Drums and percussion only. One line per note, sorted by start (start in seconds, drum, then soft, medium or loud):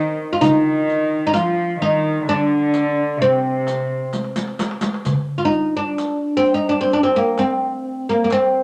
0.41 riq medium
0.41 darbuka dum medium
0.88 riq soft
0.88 darbuka ka soft
1.34 riq soft
1.34 darbuka tek medium
1.81 riq soft
1.81 darbuka ka soft
2.28 riq soft
2.74 riq soft
2.74 darbuka tek medium
3.67 riq soft
3.67 darbuka tek medium
4.13 riq medium
4.13 darbuka tek medium
4.24 darbuka ka medium
4.36 riq medium
4.36 darbuka tek medium
4.48 darbuka ka medium
4.59 riq medium
4.59 darbuka tek medium
4.71 darbuka ka medium
4.81 riq medium
4.81 darbuka tek medium
4.94 darbuka ka medium
5.05 riq medium
5.05 darbuka dum medium
5.51 riq soft
5.98 riq soft
5.98 darbuka tek medium
6.45 riq soft
6.91 riq soft
7.38 riq soft
7.38 darbuka tek medium
8.30 riq soft
8.30 darbuka tek medium